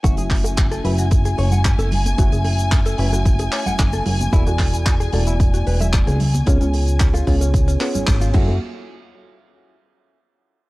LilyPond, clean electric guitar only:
\new Staff \with { instrumentName = "Clean electric guitar" } { \time 4/4 \key fis \minor \tempo 4 = 112 fis'16 gis'16 r8. a'16 b'16 fis'16 r16 gis'16 cis''16 fis''16 r16 a'16 r8 | fis'16 gis'16 r8. a'16 b'16 fis'16 r16 gis'16 cis''16 fis''16 r16 a'16 r8 | e'16 fis'16 r8. gis'16 a'16 e'16 r16 fis'16 b'16 e''16 r16 gis'16 r8 | cis'16 cis'16 r8. eis'16 eis'16 cis'16 r16 cis'16 b16 cis'16 r16 eis'16 fis'8 |
r1 | }